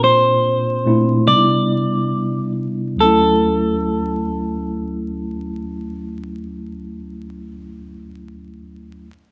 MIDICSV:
0, 0, Header, 1, 3, 480
1, 0, Start_track
1, 0, Key_signature, 2, "major"
1, 0, Tempo, 834492
1, 1220, Tempo, 891530
1, 1692, Time_signature, 4, 2, 24, 8
1, 5094, End_track
2, 0, Start_track
2, 0, Title_t, "Clean electric guitar"
2, 0, Program_c, 0, 27
2, 22, Note_on_c, 0, 72, 89
2, 731, Note_off_c, 0, 72, 0
2, 733, Note_on_c, 0, 74, 87
2, 1434, Note_off_c, 0, 74, 0
2, 1696, Note_on_c, 0, 69, 88
2, 4121, Note_off_c, 0, 69, 0
2, 5094, End_track
3, 0, Start_track
3, 0, Title_t, "Tine electric piano"
3, 0, Program_c, 1, 4
3, 0, Control_c, 1, 64, 127
3, 0, Note_on_c, 1, 46, 79
3, 0, Note_on_c, 1, 58, 60
3, 0, Note_on_c, 1, 60, 65
3, 0, Note_on_c, 1, 62, 62
3, 0, Note_on_c, 1, 65, 77
3, 436, Note_off_c, 1, 46, 0
3, 438, Note_off_c, 1, 58, 0
3, 439, Note_off_c, 1, 60, 0
3, 441, Note_off_c, 1, 62, 0
3, 461, Note_off_c, 1, 65, 0
3, 492, Note_on_c, 1, 46, 70
3, 493, Note_on_c, 1, 57, 73
3, 498, Note_on_c, 1, 60, 71
3, 501, Note_on_c, 1, 62, 72
3, 502, Note_on_c, 1, 64, 87
3, 730, Note_off_c, 1, 46, 0
3, 731, Note_off_c, 1, 57, 0
3, 733, Note_off_c, 1, 60, 0
3, 733, Note_off_c, 1, 62, 0
3, 733, Note_on_c, 1, 48, 80
3, 734, Note_on_c, 1, 55, 60
3, 736, Note_off_c, 1, 64, 0
3, 736, Control_c, 1, 64, 0
3, 736, Note_on_c, 1, 59, 65
3, 739, Note_on_c, 1, 62, 68
3, 743, Note_on_c, 1, 63, 66
3, 778, Note_on_c, 1, 64, 79
3, 783, Note_off_c, 1, 63, 0
3, 828, Control_c, 1, 64, 127
3, 1641, Note_off_c, 1, 48, 0
3, 1641, Note_off_c, 1, 55, 0
3, 1642, Note_off_c, 1, 59, 0
3, 1644, Note_off_c, 1, 62, 0
3, 1662, Note_off_c, 1, 64, 0
3, 1673, Note_on_c, 1, 38, 68
3, 1684, Note_on_c, 1, 54, 73
3, 1695, Note_on_c, 1, 57, 73
3, 1700, Control_c, 1, 64, 0
3, 1706, Note_on_c, 1, 61, 63
3, 1716, Note_on_c, 1, 64, 80
3, 1800, Control_c, 1, 64, 127
3, 4098, Note_off_c, 1, 38, 0
3, 4109, Note_off_c, 1, 54, 0
3, 4120, Note_off_c, 1, 57, 0
3, 4132, Note_off_c, 1, 61, 0
3, 4142, Note_off_c, 1, 64, 0
3, 4969, Control_c, 1, 64, 0
3, 5094, End_track
0, 0, End_of_file